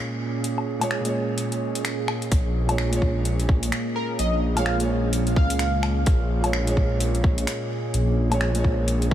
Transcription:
0.00 0.76 A#2 medium
0.00 9.14 A#2 medium
0.00 0.78 G#3 medium
0.00 9.14 A#3 medium
0.00 9.14 C#4 medium
0.00 9.14 G#4 medium
0.00 0.80 C#5 loud
0.44 closed hi-hat medium
0.58 low woodblock soft
0.79 0.99 A#2 medium
0.79 1.02 G#3 medium
0.79 1.02 C#5 medium
0.79 closed hi-hat medium
0.79 low woodblock medium
0.91 finger snap loud
1.00 2.63 A#2 medium
1.04 2.65 G#3 medium
1.04 2.67 C#5 medium
1.04 closed hi-hat medium
1.38 closed hi-hat medium
1.52 closed hi-hat soft
1.75 closed hi-hat medium
1.85 finger snap medium
1.85 closed hi-hat medium
2.08 finger snap medium
2.08 low woodblock medium
2.22 closed hi-hat soft
2.32 3.71 A#1 medium
2.32 kick loud
2.32 closed hi-hat medium
2.67 2.87 A#2 medium
2.67 2.89 G#3 medium
2.67 2.90 C#5 medium
2.67 closed hi-hat medium
2.67 low woodblock medium
2.78 finger snap loud
2.88 4.51 A#2 medium
2.93 4.53 G#3 medium
2.93 4.55 C#5 loud
2.93 closed hi-hat medium
3.02 kick medium
3.25 closed hi-hat medium
3.40 closed hi-hat soft
3.49 kick loud
3.63 closed hi-hat medium
3.72 finger snap loud
3.72 closed hi-hat medium
3.96 4.17 A#4 medium
4.19 5.38 A#1 medium
4.19 4.44 D#5 medium
4.19 closed hi-hat medium
4.55 4.74 A#2 medium
4.55 4.77 G#3 medium
4.55 4.81 F5 medium
4.55 closed hi-hat medium
4.55 low woodblock medium
4.59 4.78 C#5 medium
4.66 finger snap loud
4.76 6.39 A#2 medium
4.76 6.41 G#3 medium
4.80 6.43 C#5 medium
4.80 closed hi-hat medium
5.13 closed hi-hat medium
5.27 closed hi-hat soft
5.36 6.05 C#2 medium
5.36 6.03 F5 medium
5.36 kick loud
5.50 closed hi-hat medium
5.59 finger snap loud
5.59 closed hi-hat medium
5.83 finger snap medium
5.83 low woodblock soft
6.06 7.46 A#1 medium
6.06 kick loud
6.06 closed hi-hat medium
6.42 6.61 A#2 medium
6.42 6.64 G#3 medium
6.42 closed hi-hat medium
6.42 low woodblock medium
6.46 6.65 C#5 medium
6.53 finger snap loud
6.63 8.26 A#2 medium
6.63 8.28 G#3 medium
6.67 8.30 C#5 loud
6.67 closed hi-hat medium
6.77 kick medium
7.00 closed hi-hat medium
7.15 closed hi-hat soft
7.24 kick loud
7.38 closed hi-hat medium
7.47 finger snap loud
7.47 closed hi-hat medium
7.94 9.14 A#1 medium
7.94 closed hi-hat medium
8.30 8.50 A#2 medium
8.30 8.52 G#3 medium
8.30 closed hi-hat medium
8.30 low woodblock medium
8.34 8.53 C#5 medium
8.41 finger snap loud
8.51 9.14 A#2 medium
8.51 closed hi-hat medium
8.55 9.14 G#3 medium
8.59 9.14 C#5 medium
8.64 kick medium
8.88 closed hi-hat soft
9.02 closed hi-hat soft

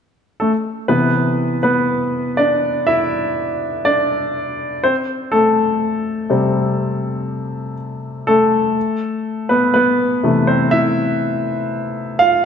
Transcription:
0.40 0.53 A3 soft
0.40 0.51 A4 medium
0.88 2.32 C3 soft
0.88 2.33 E3 soft
0.88 1.59 B3 soft
0.88 1.59 B4 medium
1.63 2.33 B3 medium
1.63 2.39 B4 medium
2.37 2.83 D4 medium
2.37 2.88 D5 medium
2.87 3.81 E4 medium
2.87 3.88 E5 medium
3.85 4.79 D4 medium
3.85 4.79 D5 medium
4.84 4.95 C4 medium
4.84 4.95 C5 medium
5.32 6.27 A3 soft
5.32 6.26 A4 medium
6.30 7.74 C3 soft
6.30 7.74 G3 soft
6.30 7.74 C4 soft
8.27 9.47 A3 soft
8.27 9.54 A4 medium
9.49 9.73 B3 soft
9.49 9.72 B4 medium
9.74 10.45 B3 medium
9.74 10.50 B4 medium
10.23 10.89 C3 soft
10.23 10.89 E3 soft
10.23 10.90 A3 soft
10.47 10.71 C4 soft
10.47 10.71 C5 medium
10.71 12.16 E4 medium
10.71 12.24 E5 medium
12.19 12.44 F4 medium
12.19 12.42 F5 medium

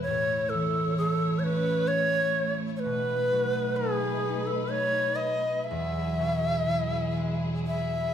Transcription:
0.00 0.12 E2 medium
0.00 0.12 B2 soft
0.00 0.12 E3 soft
0.00 0.12 G#3 soft
0.00 2.80 E4 soft
0.00 0.51 C#5 medium
0.06 2.89 A2 medium
0.06 5.65 A3 medium
0.06 2.81 C#5 medium
0.49 0.97 A4 medium
0.54 2.89 E3 soft
0.98 3.81 A3 soft
0.98 1.41 A4 medium
1.39 1.45 C#5 medium
1.44 4.35 C#4 soft
1.44 1.89 B4 medium
1.88 2.56 C#5 medium
2.77 3.78 B4 medium
2.77 2.81 C#5 medium
2.85 5.74 B2 medium
2.85 5.67 D#4 medium
2.85 5.67 B4 medium
3.32 5.74 F#3 medium
3.76 4.48 G#4 medium
3.82 7.15 A3 medium
4.30 5.77 D#4 medium
4.47 4.72 A4 medium
4.70 5.17 C#5 medium
5.16 5.66 D#5 medium
5.64 7.45 E5 medium
5.71 8.14 E2 medium
5.71 8.14 F#3 medium
5.71 8.14 E4 medium
5.71 8.14 G#4 medium
6.18 8.14 B2 soft
6.66 8.14 E3 soft
7.17 8.14 G#3 soft
7.67 8.14 E5 medium

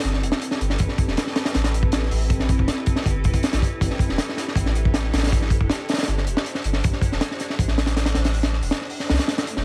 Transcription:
0.00 0.24 G1 medium
0.00 snare soft
0.00 downlifter medium
0.05 closed hi-hat medium
0.14 snare soft
0.23 0.31 E1 medium
0.23 closed hi-hat medium
0.32 snare loud
0.41 closed hi-hat loud
0.51 snare medium
0.61 0.77 G1 medium
0.61 closed hi-hat medium
0.70 snare soft
0.79 0.88 A1 loud
0.79 kick loud
0.79 closed hi-hat medium
0.89 snare soft
0.98 kick medium
0.98 closed hi-hat medium
1.08 1.16 E1 medium
1.08 snare soft
1.17 snare loud
1.17 closed hi-hat medium
1.27 snare medium
1.36 snare loud
1.36 closed hi-hat medium
1.45 snare loud
1.45 closed hi-hat medium
1.55 2.10 A1 loud
1.55 snare loud
1.55 closed hi-hat medium
1.64 snare loud
1.64 closed hi-hat medium
1.74 closed hi-hat medium
1.83 kick medium
1.92 snare loud
1.92 closed hi-hat medium
2.03 snare soft
2.11 2.57 A1 loud
2.11 open hi-hat medium
2.30 kick loud
2.30 closed hi-hat medium
2.39 snare soft
2.49 kick loud
2.49 closed hi-hat medium
2.59 2.67 E1 loud
2.59 kick loud
2.68 snare loud
2.68 closed hi-hat medium
2.86 kick loud
2.86 closed hi-hat medium
2.96 snare medium
3.06 3.26 G1 medium
3.06 kick loud
3.06 closed hi-hat medium
3.24 3.33 E1 medium
3.24 kick medium
3.24 closed hi-hat medium
3.33 kick loud
3.33 closed hi-hat medium
3.43 snare loud
3.43 closed hi-hat medium
3.53 3.61 A1 medium
3.53 snare loud
3.53 closed hi-hat medium
3.62 kick medium
3.62 closed hi-hat medium
3.81 3.90 A1 loud
3.81 kick loud
3.81 closed hi-hat medium
3.90 snare soft
3.99 kick loud
3.99 closed hi-hat medium
4.09 4.18 E1 loud
4.09 snare soft
4.18 snare loud
4.18 closed hi-hat loud
4.29 snare medium
4.37 snare soft
4.37 closed hi-hat medium
4.48 snare soft
4.56 5.11 A1 loud
4.56 kick loud
4.56 closed hi-hat medium
4.66 snare medium
4.75 closed hi-hat medium
4.85 kick loud
4.94 snare loud
4.94 closed hi-hat medium
5.04 snare soft
5.13 5.59 A1 loud
5.13 snare loud
5.13 closed hi-hat medium
5.18 snare medium
5.18 closed hi-hat medium
5.23 snare medium
5.23 closed hi-hat medium
5.27 snare medium
5.27 closed hi-hat medium
5.32 kick loud
5.32 closed hi-hat medium
5.42 snare soft
5.50 kick loud
5.50 closed hi-hat medium
5.61 5.69 E1 loud
5.61 kick loud
5.69 snare loud
5.69 closed hi-hat medium
5.89 snare medium
5.89 closed hi-hat medium
5.93 snare medium
5.93 closed hi-hat medium
5.98 snare medium
5.98 closed hi-hat medium
6.03 snare medium
6.03 closed hi-hat medium
6.08 6.28 G1 medium
6.08 snare soft
6.08 closed hi-hat medium
6.18 snare soft
6.27 6.35 E1 medium
6.27 closed hi-hat medium
6.37 snare loud
6.46 closed hi-hat medium
6.55 snare medium
6.64 6.81 G1 medium
6.64 closed hi-hat medium
6.73 snare soft
6.84 6.92 A1 loud
6.84 kick loud
6.84 closed hi-hat medium
6.93 snare soft
7.01 kick medium
7.01 closed hi-hat medium
7.12 7.20 E1 medium
7.12 snare soft
7.21 snare loud
7.21 closed hi-hat medium
7.31 snare medium
7.39 snare soft
7.39 closed hi-hat medium
7.50 snare soft
7.59 8.14 A1 loud
7.59 kick loud
7.59 closed hi-hat medium
7.68 snare medium
7.78 snare loud
7.78 closed hi-hat medium
7.86 snare loud
7.86 closed hi-hat medium
7.96 snare loud
7.96 closed hi-hat medium
8.06 snare loud
8.06 closed hi-hat medium
8.15 8.61 A1 loud
8.15 snare loud
8.15 closed hi-hat medium
8.25 snare loud
8.25 closed hi-hat medium
8.34 open hi-hat medium
8.43 snare loud
8.43 closed hi-hat medium
8.53 snare soft
8.62 8.71 E1 medium
8.62 open hi-hat medium
8.71 snare loud
8.71 closed hi-hat medium
8.81 snare soft
8.90 open hi-hat medium
9.00 snare soft
9.09 9.18 C2 medium
9.09 snare loud
9.09 closed hi-hat medium
9.09 swell medium
9.14 snare medium
9.14 closed hi-hat medium
9.19 snare loud
9.19 closed hi-hat medium
9.28 snare loud
9.28 closed hi-hat medium
9.38 snare loud
9.38 closed hi-hat medium
9.47 closed hi-hat medium
9.57 9.65 E1 medium
9.57 snare medium

